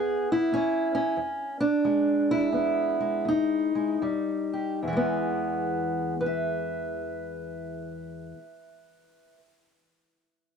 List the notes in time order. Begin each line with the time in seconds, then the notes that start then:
Already playing: E2 B3 G#4
0.32 E4
0.52 E2 C#4
0.95 C#4
1.17 E2
1.60 D4
1.85 E2 G#3
2.31 E4
2.52 E2 B3
3.00 G#3
3.25 E2 D#4
3.75 G#3
4.02 F2 G3
4.53 G4
4.83 E2
4.88 E3
4.93 G#3
4.97 B3
6.21 B4
6.26 E5